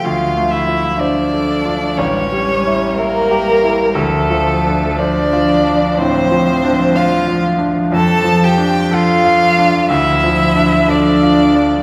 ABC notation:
X:1
M:4/4
L:1/8
Q:1/4=61
K:Dm
V:1 name="Violin"
f e d2 ^c2 B2 | A2 d2 c2 f z | a g f2 e2 d2 |]
V:2 name="Violin"
F E D2 ^C2 B,2 | A,2 D2 C2 F z | A G F2 E2 D2 |]
V:3 name="Grand piano"
(3D,, A, F (3c A F (3A,,, G, E (3e G E | (3D,, F, D (3c F D (3A,, F, D (3c F D | (3F,, F, D (3A F D (3D,, F, D (3A F D |]
V:4 name="Cello" clef=bass
F,4 G,4 | F,8- | F,4 F,4 |]